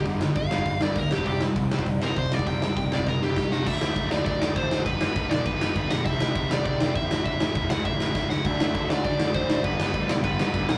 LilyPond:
<<
  \new Staff \with { instrumentName = "Overdriven electric guitar" } { \time 4/4 \key g \major \tempo 4 = 200 << { r1 | r1 | r2. r8 fis''8 | e''4. d''8 d''4 c''4 |
b'4. d''8 b'4. fis''8 | e''4. d''8 d''4 e''4 | e''4. fis''8 e''4. fis''8 | e''4. d''8 d''4 c''4 |
b'4. d''8 b'4. fis''8 | } \\ { r4 f''4. d''8 bes'8 g'8 | g'8 r2 bes'8 c''8 d''8 | g''4. d''8 bes'8 g'4. | r1 |
r1 | r1 | r1 | r1 |
r1 | } >> }
  \new Staff \with { instrumentName = "Overdriven electric guitar" } { \clef bass \time 4/4 \key g \major <g, d g>8 <g, d>8 <g, d>8 <g, d g>8 <g, d>8 <g, d g>8 <g, d>8 <c g c'>8 | <c g c'>8 <c g>8 <c g>8 <c g c'>8 <c g>8 <c g c'>8 <c g>8 <c g>8 | <c g c'>8 <c g>8 <c g>8 <c g c'>8 <c g>8 <c g c'>8 <c g>8 <c g>8 | <d fis a d'>8 <d fis a d'>8 <d fis a d'>8 <d fis a d'>8 <d fis a d'>8 <d fis a d'>8 <d fis a d'>8 <d fis a d'>8 |
<g, d g b d'>8 <g, d g b d'>8 <g, d g b d'>8 <g, d g b d'>8 <g, d g b d'>8 <g, d g b d'>8 <g, d g b d'>8 <g, d g b d'>8 | <c g c' e'>8 <c g c' e'>8 <c g c' e'>8 <c g c' e'>8 <c g c' e'>8 <c g c' e'>8 <c g c' e'>8 <a, e a cis' e'>8 | <a, e a cis' e'>8 <a, e a cis' e'>8 <a, e a cis' e'>8 <a, e a cis' e'>8 <a, e a cis' e'>8 <a, e a cis' e'>8 <a, e a cis' e'>8 <a, e a cis' e'>8 | <d fis a d'>8 <d fis a d'>8 <d fis a d'>8 <d fis a d'>8 <d fis a d'>8 <d fis a d'>8 <d fis a d'>8 <d fis a d'>8 |
<g, d g b d'>8 <g, d g b d'>8 <g, d g b d'>8 <g, d g b d'>8 <g, d g b d'>8 <g, d g b d'>8 <g, d g b d'>8 <g, d g b d'>8 | }
  \new Staff \with { instrumentName = "Overdriven electric guitar" } { \clef bass \time 4/4 \key g \major <g, d g>8 <g, d>8 <g, d>8 <g, d g>8 <g, d>8 <g, d g>8 <g, d>8 <c g c'>8 | <c g c'>8 <c g>8 <c g>8 <c g c'>8 <c g>8 <c g c'>8 <c g>8 <c g>8 | <c g c'>8 <c g>8 <c g>8 <c g c'>8 <c g>8 <c g c'>8 <c g>8 <c g>8 | r1 |
r1 | r1 | r1 | <d a d'>8 <d a d'>8 <d a d'>8 <d a d'>8 <d a d'>8 <d a d'>8 <d a d'>8 <d a d'>8 |
<g, d g>8 <g, d g>8 <g, d g>8 <g, d g>8 <g, d g>8 <g, d g>8 <g, d g>8 <g, d g>8 | }
  \new Staff \with { instrumentName = "Picked electric bass" } { \clef bass \time 4/4 \key g \major g,,8 g,,8 g,,4 g,,8 g,,8 d,8 c,8 | c,4 c,8 c,8 c,8 c,8 c,8 c,8 | c,8 c,8 c,4 c,8 c,8 g,8 c,8 | d,8 d,8 d,4 d,8 d,8 a,,4 |
g,,8 g,,8 d,8 b,,8 g,,4 g,,8 b,,8 | c,8 c,8 c,4 c,8 c,8 e,8 a,,8 | a,,8 a,,8 e,,8 cis,8 a,,4 a,,8 cis,8 | d,8 d,8 d,4 d,8 d,8 a,,4 |
g,,8 g,,8 d,8 b,,8 g,,4 g,,8 b,,8 | }
  \new DrumStaff \with { instrumentName = "Drums" } \drummode { \time 4/4 <hho bd>8 sn8 <hho bd>8 sn16 bd16 <hho bd>8 sn8 <hho bd>8 sn16 bd16 | <hho bd>8 sn8 <hho bd>8 sn16 bd16 <hho bd>8 sn8 <hho bd>8 sn16 bd16 | <hho bd>8 sn8 <hho bd>8 sn16 bd16 <bd sn>8 sn8 <bd sn>8 sn8 | <cymc bd>8 sn8 <cymc bd>8 sn8 <cymc bd>8 sn8 <cymc bd>8 sn8 |
<cymc bd>8 sn8 <cymc bd>8 sn8 <cymc bd>8 sn8 <cymc bd>8 sn8 | <cymc bd>8 sn8 <cymc bd>8 sn8 <cymc bd>8 sn8 <cymc bd>8 sn8 | <cymc bd>8 sn8 <cymc bd>8 sn8 <cymc bd>8 sn8 <bd sn>8 sn8 | <cymc bd>8 sn8 <cymc bd>8 sn8 <cymc bd>8 sn8 <cymc bd>8 sn8 |
<cymc bd>8 sn8 <cymc bd>8 sn8 <cymc bd>8 sn8 <cymc bd>8 sn8 | }
>>